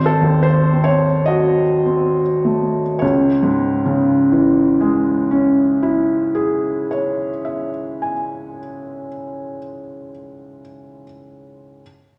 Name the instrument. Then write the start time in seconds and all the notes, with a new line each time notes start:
felt piano
Already playing: G#1 C5
0.06 A4
0.21 D#2
0.43 C5
0.73 C4
0.84 C#5
1.26 F#4 D#5
1.86 C4
2.45 A3
2.99 C#2 C#5
3.43 G#2
3.86 C#3
4.32 E3
4.81 G#3
5.31 C#4
5.83 E4
6.35 G#4
6.91 C#5
7.45 E5
8.02 G#5